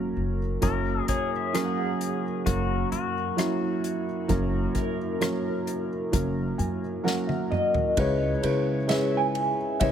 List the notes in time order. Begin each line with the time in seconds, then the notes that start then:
Already playing: F#1 G#1 F#2 F#3 A#3 C#4 A#4
0.17 F#1
0.61 F#1 F#2 F#3 A#3 C#4 A#4, kick, closed hi-hat
1.08 G#4 C#5, kick, closed hi-hat
1.36 E5
1.53 F#3 A#3 C#4 G#4 A#4, cross-stick, closed hi-hat
1.64 F#5
2.01 closed hi-hat
2.46 F#1 F#3 A#3 C#4 F#4 A#4, kick, closed hi-hat
2.92 F#2 F#4, closed hi-hat
3.37 F#3 A#3 C#4 E4, cross-stick, closed hi-hat
3.84 closed hi-hat
4.28 F#1 F#2 F#3 A#3 C#4 A#4, kick, closed hi-hat
4.75 A#4, kick, closed hi-hat
5.21 F#3 A#3 C#4 A#4, cross-stick, closed hi-hat
5.67 closed hi-hat
6.12 F#1 F#3 A#3 C#4 A#4, kick, closed hi-hat
6.58 F#2 G#5, closed hi-hat
7.03 F#3 A#3 C#4 A#4 F#5, snare
7.27 E5, high tom
7.51 D#5, mid tom
7.74 floor tom
7.97 C#2 C#3 G#3 C#4 E4 B4 C#5, kick, ride
8.01 E4 G#4
8.41 C#3 G#3 C#4 E4 B4, ride
8.87 G#3 C#4 E4 G#4 E5, snare, ride
8.92 G#4 B4
9.17 G#5
9.35 ride
9.80 C#2 G#3 C#4 E4 G#4 B4 C#5 E5, kick, ride